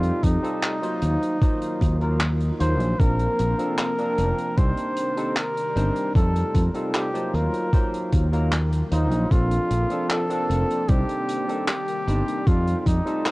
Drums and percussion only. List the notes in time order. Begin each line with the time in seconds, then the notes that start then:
0.03 closed hi-hat
0.23 kick, closed hi-hat
0.44 closed hi-hat
0.62 clap, closed hi-hat
0.83 closed hi-hat
1.02 closed hi-hat
1.23 closed hi-hat
1.42 kick, closed hi-hat
1.62 closed hi-hat
1.81 kick, closed hi-hat
2.01 closed hi-hat
2.20 clap, closed hi-hat
2.40 closed hi-hat
2.60 closed hi-hat
2.80 closed hi-hat
3.00 kick, closed hi-hat
3.19 closed hi-hat
3.39 closed hi-hat
3.59 closed hi-hat
3.78 clap, closed hi-hat
3.98 closed hi-hat
4.18 closed hi-hat
4.38 closed hi-hat
4.57 kick, closed hi-hat
4.77 closed hi-hat
4.96 closed hi-hat
5.17 closed hi-hat
5.36 clap, closed hi-hat
5.57 closed hi-hat
5.76 closed hi-hat
5.96 closed hi-hat
6.15 kick, closed hi-hat
6.36 closed hi-hat
6.55 kick, closed hi-hat
6.74 closed hi-hat
6.94 clap, closed hi-hat
7.15 closed hi-hat
7.34 closed hi-hat
7.54 closed hi-hat
7.73 kick, closed hi-hat
7.94 closed hi-hat
8.12 kick, closed hi-hat
8.33 closed hi-hat
8.52 clap, closed hi-hat
8.72 closed hi-hat
8.91 closed hi-hat
9.11 closed hi-hat
9.31 kick, closed hi-hat
9.51 closed hi-hat
9.71 closed hi-hat
9.90 closed hi-hat
10.10 clap, closed hi-hat
10.30 closed hi-hat
10.50 closed hi-hat
10.70 closed hi-hat
10.88 kick, closed hi-hat
11.09 closed hi-hat
11.28 closed hi-hat
11.49 closed hi-hat
11.68 clap, closed hi-hat
11.87 closed hi-hat
12.08 closed hi-hat
12.28 closed hi-hat
12.47 kick, closed hi-hat
12.67 closed hi-hat
12.86 kick, closed hi-hat
13.07 closed hi-hat
13.26 clap, closed hi-hat